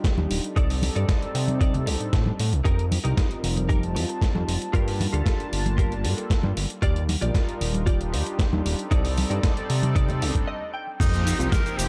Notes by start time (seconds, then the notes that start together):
Already playing: G3 D4 D#4 F4 G4
0.04 kick, snare, closed hi-hat
0.18 D#2, high conga
0.31 D#1, open hi-hat
0.43 G3 C4 D#4 A4 D5, closed hi-hat
0.56 C2 D#4 A4 D5, kick, closed hi-hat
0.70 open hi-hat
0.82 open hi-hat, high conga
0.95 G2 G3 C4 D#4 A4 D5, closed hi-hat
1.09 kick, snare, closed hi-hat
1.22 closed hi-hat
1.35 C3, open hi-hat
1.48 closed hi-hat, high conga
1.60 D#4 A4 D5, kick, closed hi-hat
1.74 closed hi-hat, low conga
1.86 C2 G3 C4 D4 D#4 A4, muted clean electric guitar stroke, open hi-hat
1.99 A2, muted clean electric guitar stroke, closed hi-hat
2.13 A2 G3 C4 D4 D#4 A4, kick, snare, closed hi-hat
2.26 high conga
2.39 A2, open hi-hat
2.52 C2, closed hi-hat
2.64 F2 D#4 G4 A#4, kick, closed hi-hat
2.79 closed hi-hat
2.92 open hi-hat, high conga
3.04 C2 G3 C4 D#4 F4 G4 A#4, closed hi-hat
3.17 kick, snare, closed hi-hat
3.31 closed hi-hat
3.43 F1, open hi-hat
3.57 closed hi-hat, high conga
3.69 G3 C4 D#4 F4 G4 A#4 A5, kick, closed hi-hat
3.83 closed hi-hat
3.95 F2, muted clean electric guitar stroke, open hi-hat
4.08 muted clean electric guitar stroke, closed hi-hat
4.22 kick, snare, closed hi-hat
4.35 F2, high conga
4.48 F1, open hi-hat
4.61 G3 A#3 D4 F4 A5, closed hi-hat
4.73 G2 F4 G4 A#4, kick, closed hi-hat
4.88 open hi-hat
5.01 open hi-hat, high conga
5.12 D2 G3 A#3 D4 F4 G4 A4 A5, closed hi-hat
5.26 kick, snare, closed hi-hat
5.40 closed hi-hat
5.53 G1, open hi-hat
5.66 closed hi-hat, high conga
5.78 F4 G4 A#4, kick, closed hi-hat
5.92 closed hi-hat
6.04 G2 G3 A#3 D4 F4 A4, muted clean electric guitar stroke, open hi-hat
6.17 muted clean electric guitar stroke, closed hi-hat
6.30 G3 A#3 D4 F4 A4, kick, snare, closed hi-hat
6.43 G2, high conga
6.57 G1, open hi-hat
6.70 closed hi-hat
6.82 D#2 F4 G4 D5, kick, closed hi-hat
6.96 closed hi-hat
7.09 open hi-hat, high conga
7.21 A#1 G3 D4 D#4 F4 G4 A#4 D5, closed hi-hat
7.35 kick, snare, closed hi-hat
7.49 closed hi-hat
7.61 D#1, open hi-hat
7.74 closed hi-hat, high conga
7.86 G3 D4 D#4 F4 G4 D5, kick, closed hi-hat
8.01 closed hi-hat
8.13 D#2, muted clean electric guitar stroke, open hi-hat
8.25 muted clean electric guitar stroke, closed hi-hat
8.39 kick, snare, closed hi-hat
8.53 D#2, high conga
8.66 D#1, open hi-hat
8.78 G3 C4 D#4 A4 D5, closed hi-hat
8.91 C2 D#4 A4 D5, kick, closed hi-hat
9.05 open hi-hat
9.18 open hi-hat, high conga
9.30 G2 G3 C4 D#4 A4 D5, closed hi-hat
9.43 kick, snare, closed hi-hat
9.57 closed hi-hat
9.70 C3, open hi-hat
9.83 closed hi-hat, high conga
9.95 D#4 A4 D5, kick, closed hi-hat
10.09 closed hi-hat, low conga
10.22 C2 G3 C4 D4 D#4 A4, muted clean electric guitar stroke, open hi-hat
10.35 A2, muted clean electric guitar stroke, kick, closed hi-hat
10.48 D#5
10.74 G5
11.00 F2 F3 A#3 C4 D#4 G4, kick, closed hi-hat, crash, impact, cabasa
11.13 C4, closed hi-hat, cabasa
11.26 D#4, open hi-hat, cabasa
11.38 C2 F3 A#3 C4 D#4 F4 G4, closed hi-hat, cabasa
11.52 G4 A#4, kick, snare, closed hi-hat, cabasa
11.65 A#3, closed hi-hat, cabasa
11.78 F1 C4 G4, open hi-hat, cabasa